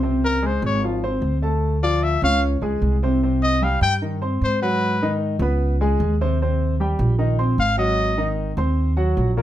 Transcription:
Already playing: upright bass C#2
0.03 grand piano C3 C4 C5
0.25 trumpet A#4
0.43 grand piano G#3 G#4 G#5, trumpet C5
0.62 upright bass G#1, trumpet C#5
0.84 grand piano F3 F4 F5
1.04 grand piano C4 C5 C6
1.22 upright bass D2
1.42 grand piano A3 A4 A5
1.83 grand piano F3 F4 F5, trumpet D5
2.03 trumpet E5
2.22 upright bass C#2, grand piano C#4 C#5 C#6, trumpet F5
2.62 upright bass C#2, grand piano G#3 G#4 G#5
2.82 upright bass C2
3.03 grand piano C3 C4 C5
3.23 grand piano C3 C4 C5
3.43 trumpet D#5
3.62 grand piano G3 G4 G5, trumpet F5
3.81 upright bass G2, trumpet G5
4.02 grand piano D#3 D#4 D#5
4.22 grand piano C4 C5 C6
4.42 upright bass G#2, trumpet C5
4.62 grand piano F#3 F#4 F#5, trumpet B4
5.02 grand piano D#3 D#4 D#5
5.39 upright bass C#2, grand piano B3 B4 B5
5.81 grand piano G#3 G#4 G#5
6.00 upright bass D#2
6.21 grand piano C3 C4 C5
6.42 grand piano C3 C4 C5
6.80 grand piano G3 G4 G5
6.99 upright bass A#1
7.18 grand piano D#3 D#4 D#5
7.39 grand piano C4 C5 C6
7.58 upright bass G#1, trumpet F5
7.77 grand piano F#3 F#4 F#5, trumpet D#5
8.18 grand piano D#3 D#4 D#5
8.57 upright bass D#2, grand piano C4 C5 C6
8.96 grand piano F#3 F#4 F#5
9.17 upright bass A#1
9.37 grand piano A#2 A#3 A#4

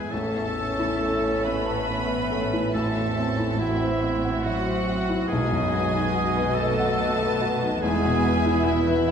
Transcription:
Already playing: cello section E2, grand piano B3 E4 G#4, viola section E4 B4, oboe G#4
0.10 double bass section A1, grand piano A1, cello section A2, french horn section A3, bassoon C#4, viola section C#4 A4, oboe A4, clarinet A4, violin section E5 A5, flute E5
0.35 grand piano E2
0.58 grand piano C#4
0.79 grand piano E4
1.02 grand piano A4
1.23 grand piano C#5
1.44 french horn section B3, oboe B4, clarinet B4, grand piano E5, violin section B5
1.66 grand piano A5
1.88 grand piano E5
2.08 grand piano C#5
2.31 grand piano A4
2.53 grand piano E4
2.72 grand piano A1, french horn section A3, viola section C4 F#4, oboe A4, clarinet A4, violin section A5
2.95 grand piano E2
3.17 grand piano C4
3.39 grand piano E4
3.57 french horn section E3, bassoon C4, clarinet E4, oboe E4, grand piano F#4, violin section E5
3.82 grand piano C5
4.04 grand piano E5
4.25 grand piano F#5
4.44 french horn section F#3, oboe F#4, clarinet F#4, grand piano E5, violin section F#5
4.68 grand piano C5
4.88 grand piano F#4
5.09 grand piano E4
5.28 double bass section B1, grand piano B1, cello section B2, french horn section G#3, bassoon B3, viola section B3, clarinet G#4, oboe G#4, violin section D#5 G#5, flute D#5
5.52 grand piano F#2
5.75 grand piano B3
5.94 grand piano D#4
6.15 grand piano F#4
6.36 grand piano B4
6.54 french horn section A3, oboe A4, clarinet A4, violin section A5
6.59 grand piano D#5
6.79 grand piano F#5
7.00 grand piano D#5
7.23 grand piano B4
7.41 grand piano F#4
7.63 grand piano D#4
7.80 double bass section E1, cello section E2, grand piano E2, french horn section G#3, viola section E4, clarinet G#4, oboe G#4, violin section E5 G#5, flute E5
8.04 grand piano B2
8.24 grand piano B3
8.46 grand piano E4
8.64 french horn section E3, grand piano B3, oboe E4, clarinet E4, violin section E5
8.87 grand piano B4
9.08 grand piano E5

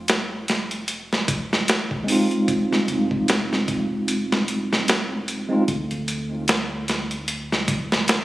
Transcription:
Already playing: upright bass F1
0.08 snare, closed hi-hat
0.48 snare, closed hi-hat
0.71 closed hi-hat
0.88 closed hi-hat
1.13 snare
1.28 kick, closed hi-hat
1.53 snare
1.68 snare, closed hi-hat
1.91 kick
2.04 tine electric piano G#3 C4
2.08 tine electric piano D#4 F4, open hi-hat
2.31 closed hi-hat
2.48 kick, closed hi-hat
2.73 snare
2.88 upright bass F1, closed hi-hat
3.11 kick
3.28 snare, closed hi-hat
3.53 snare
3.68 kick, closed hi-hat
4.08 closed hi-hat
4.32 snare
4.48 closed hi-hat
4.73 snare
4.88 snare, closed hi-hat
5.28 closed hi-hat
5.49 tine electric piano G#3 C4 D#4 F4
5.68 upright bass D2, kick, closed hi-hat
5.91 closed hi-hat
6.08 closed hi-hat
6.48 snare, closed hi-hat
6.88 snare, closed hi-hat
7.11 closed hi-hat
7.28 closed hi-hat
7.52 snare
7.68 kick, closed hi-hat
7.92 snare
8.08 snare, closed hi-hat

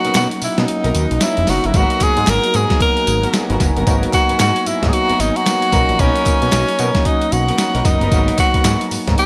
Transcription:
Already playing: tine electric piano F#3 A#3 C#4 D#4 A#4, tenor saxophone F#4, ambient pad F#4 D#5 F#5 A#5
0.05 analog synth bass B2, string section B3 D#4 A#4, closed hi-hat
0.15 analog synth bass B2, tenor saxophone F#4, snare, clap, closed hi-hat, tambourine
0.31 closed hi-hat
0.42 analog synth bass B2, tenor saxophone E4, open hi-hat, tambourine
0.58 analog synth bass B2, tine electric piano F#3 A#3 C#4 D#4, tenor saxophone D#4, snare, closed hi-hat
0.68 closed hi-hat
0.84 analog synth bass B1, string section B3 D#4 A#4, closed hi-hat
0.95 analog synth bass D#2, closed hi-hat, tambourine
1.11 analog synth bass B1, closed hi-hat
1.21 tine electric piano F#3 A#3 C#4 D#4, tenor saxophone E4, snare, clap, closed hi-hat, tambourine
1.37 analog synth bass F1, closed hi-hat
1.47 analog synth bass F#1, string section B3 D#4 A#4, tenor saxophone F#4, snare, open hi-hat, tambourine
1.64 analog synth bass G1, tenor saxophone E4, closed hi-hat
1.74 analog synth bass G#1, tine electric piano F#3 A#3 B3 D#4, string section B3 F#4 A#4, tenor saxophone F#4, ambient pad G#5 A#5, kick, closed hi-hat, tambourine
1.90 closed hi-hat
2.00 analog synth bass G#2, tenor saxophone G#4, kick, clap, closed hi-hat, tambourine
2.17 analog synth bass G#2, closed hi-hat
2.27 analog synth bass G#1, tenor saxophone A#4, snare, clap, closed hi-hat, tambourine
2.44 closed hi-hat
2.54 analog synth bass G#2, string section B3 F#4 A#4, tenor saxophone G#4, closed hi-hat, tambourine
2.70 tine electric piano F#3 A#3 B3 D#4, kick, snare, closed hi-hat
2.81 tenor saxophone A#4, kick, closed hi-hat
2.97 closed hi-hat
3.07 analog synth bass G#1, closed hi-hat, tambourine
3.23 string section B3 F#4 A#4, closed hi-hat
3.33 tine electric piano F#3 A#3 B3 D#4, snare, clap, closed hi-hat, tambourine
3.49 analog synth bass G#1, string section B3 F#4 A#4, closed hi-hat
3.60 analog synth bass F#1, kick, snare, closed hi-hat, tambourine
3.76 analog synth bass G1, string section B3 F#4 A#4, closed hi-hat
3.86 analog synth bass G#1, tine electric piano F#3 A#3 B3 D#4, string section B3 F#4 A#4, kick, closed hi-hat, tambourine
4.03 closed hi-hat
4.13 tenor saxophone F#4, kick, clap, closed hi-hat, tambourine
4.29 analog synth bass G#2, string section B3 F#4 A#4, closed hi-hat
4.40 analog synth bass G#2, tenor saxophone F#4, snare, clap, closed hi-hat, tambourine
4.56 closed hi-hat
4.66 analog synth bass G#2, tenor saxophone E4, closed hi-hat, tambourine
4.82 analog synth bass G#2, tine electric piano F#3 A#3 B3 D#4, kick, snare, closed hi-hat
4.89 tenor saxophone G#4
4.93 tenor saxophone F#4, closed hi-hat
5.09 analog synth bass G#1, string section B3 F#4 A#4, closed hi-hat
5.20 analog synth bass G#1, tenor saxophone D#4, closed hi-hat, tambourine
5.36 tenor saxophone F#4, closed hi-hat
5.46 tine electric piano F#3 A#3 B3 D#4, snare, clap, closed hi-hat, tambourine
5.62 closed hi-hat
5.72 analog synth bass B1, tine electric piano F#3 A#3 C#4 D#4, string section B3 D#4 A#4, ambient pad D#5 F#5, kick, snare, closed hi-hat, tambourine
5.89 analog synth bass A#1, closed hi-hat
5.99 analog synth bass B1, string section B3 D#4 A#4, tenor saxophone C#4, kick, closed hi-hat, tambourine
6.16 closed hi-hat
6.26 analog synth bass B2, kick, clap, closed hi-hat, tambourine
6.42 analog synth bass B2, closed hi-hat
6.52 analog synth bass B1, snare, clap, closed hi-hat, tambourine
6.69 closed hi-hat
6.79 analog synth bass B2, string section B3 D#4 A#4, closed hi-hat, tambourine
6.94 tine electric piano F#3 A#3 C#4 D#4, kick, snare, closed hi-hat
7.05 tenor saxophone D#4, kick, closed hi-hat
7.22 closed hi-hat
7.32 analog synth bass B1, tenor saxophone F#4, closed hi-hat, tambourine
7.48 string section B3 D#4 A#4, closed hi-hat
7.58 tine electric piano F#3 A#3 C#4 D#4, snare, clap, closed hi-hat, tambourine
7.75 analog synth bass B1, string section B3 D#4 A#4, closed hi-hat
7.85 analog synth bass F#1, tenor saxophone D#4, kick, snare, closed hi-hat, tambourine
8.01 analog synth bass G1, string section B3 D#4 A#4, closed hi-hat
8.11 analog synth bass G#1, tine electric piano F#3 A#3 B3 D#4, string section B3 F#4 A#4, ambient pad G#5, kick, closed hi-hat, tambourine
8.28 closed hi-hat
8.38 tenor saxophone F#4, kick, clap, closed hi-hat, tambourine
8.54 analog synth bass G#2, string section B3 F#4 A#4, kick, closed hi-hat
8.65 analog synth bass G#2, snare, clap, closed hi-hat, tambourine
8.81 closed hi-hat
8.91 analog synth bass G#2, open hi-hat, tambourine
9.07 analog synth bass G#2, tine electric piano F#3 A#3 B3 D#4, kick, snare, closed hi-hat
9.18 tenor saxophone G#4, closed hi-hat

